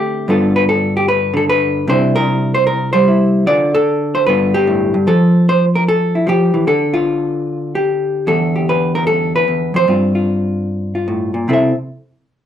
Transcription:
0.00 0.28 D3 medium
0.00 0.26 A3 medium
0.00 0.27 C4 medium
0.00 0.28 G4 medium
0.28 1.86 G2 medium
0.28 1.32 D3 medium
0.28 1.87 B3 soft
0.28 1.87 F4 medium
0.28 0.55 A4 medium
0.56 0.63 B4 medium
0.69 0.95 A4 medium
0.97 1.08 G4 medium
1.08 1.35 B4 medium
1.34 1.87 D3 medium
1.34 1.44 A4 medium
1.50 1.88 B4 loud
1.87 3.46 C3 medium
1.87 2.93 G3 medium
1.87 3.46 D4 soft
1.87 3.07 E4 soft
1.87 2.15 C5 loud
2.16 2.54 A#4 loud
2.54 2.66 C5 loud
2.67 2.92 A#4 medium
2.93 3.46 G3 medium
2.93 3.47 C5 medium
3.08 3.46 E4 soft
3.47 4.27 D3 medium
3.47 4.26 D4 medium
3.47 3.74 F4 soft
3.47 4.14 D5 loud
3.75 4.27 A4 loud
4.15 4.26 C5 loud
4.26 4.93 G2 medium
4.26 5.08 D3 soft
4.26 5.06 B3 soft
4.26 4.54 F4 soft
4.26 5.07 B4 medium
4.54 5.07 G4 medium
4.67 4.94 A2 medium
4.94 5.07 G2 medium
5.07 6.25 F3 medium
5.07 5.47 A4 medium
5.49 5.64 C5 loud
5.75 5.83 A#4 medium
5.88 6.66 A4 medium
6.15 6.29 E4 soft
6.27 6.53 F3 medium
6.27 6.68 G4 loud
6.54 6.67 E3 medium
6.67 9.87 D3 medium
6.67 7.34 A4 medium
6.94 7.74 F4 medium
7.75 8.28 G4 medium
8.27 9.47 E2 medium
8.27 8.68 A4 medium
8.56 9.89 G4 soft
8.69 8.95 B4 medium
8.95 9.06 A#4 medium
9.07 9.34 A4 loud
9.36 9.75 B4 medium
9.48 9.74 E2 medium
9.74 9.87 F2 medium
9.74 11.48 C5 loud
9.88 11.46 G2 medium
9.88 11.46 C4 soft
9.88 10.14 F4 soft
10.15 10.94 F4 soft
10.95 11.46 F4 soft
11.08 11.34 A2 medium
11.34 11.47 A#2 medium
11.48 11.72 C3 medium
11.48 11.72 C4 medium
11.48 11.72 E4 medium
11.48 11.73 A4 medium
11.53 11.75 E5 medium

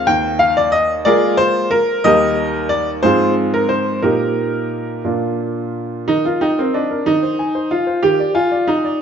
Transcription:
0.07 1.02 D#2 medium
0.07 0.40 G5 loud
0.39 0.56 F5 loud
0.57 0.73 D5 loud
0.72 0.92 D#5 loud
1.05 1.77 G#3 medium
1.05 1.77 A#3 medium
1.05 1.77 F4 medium
1.05 1.36 G#4 medium
1.05 1.36 A#4 medium
1.05 1.34 D5 loud
1.37 1.68 C5 loud
1.71 2.04 A#4 loud
2.04 3.00 D#2 medium
2.04 2.99 G3 medium
2.04 2.99 A#3 medium
2.04 3.00 D#4 medium
2.04 2.66 G4 medium
2.04 2.67 A#4 medium
2.04 2.66 D#5 loud
2.69 2.89 D5 loud
3.03 4.00 G#2 medium
3.03 3.99 F3 medium
3.03 3.99 C4 medium
3.03 3.50 F4 medium
3.03 3.49 G#4 medium
3.03 3.32 C5 loud
3.54 3.70 A#4 medium
3.69 3.99 C5 medium
4.02 5.01 A#2 medium
4.02 5.00 A#3 soft
4.02 5.01 D#4 medium
4.02 5.01 G4 medium
4.02 5.04 A#4 medium
5.04 6.05 A#2 medium
5.04 6.04 A#3 soft
5.04 6.04 D4 medium
5.04 6.04 F4 soft
6.08 6.24 D#3 medium
6.08 6.25 D#4 loud
6.25 6.42 F4 medium
6.25 6.42 A#4 soft
6.41 6.58 D#4 loud
6.41 6.59 G5 medium
6.59 6.75 C4 medium
6.59 6.76 A#4 soft
6.74 7.07 D4 medium
6.74 6.92 D#5 medium
6.91 7.07 A#4 medium
7.06 7.23 D#3 medium
7.06 7.71 D#4 medium
7.23 7.40 C5 medium
7.39 7.56 G#5 medium
7.55 7.72 C5 medium
7.71 8.00 F4 medium
7.71 7.88 F5 medium
7.87 8.03 C5 soft
8.03 8.19 D#3 medium
8.03 8.32 G4 loud
8.20 8.36 D5 medium
8.35 8.67 F4 loud
8.35 8.52 G#5 medium
8.52 8.69 D5 medium
8.67 8.97 D#4 loud
8.67 8.85 A#5 medium
8.85 9.01 D5 medium

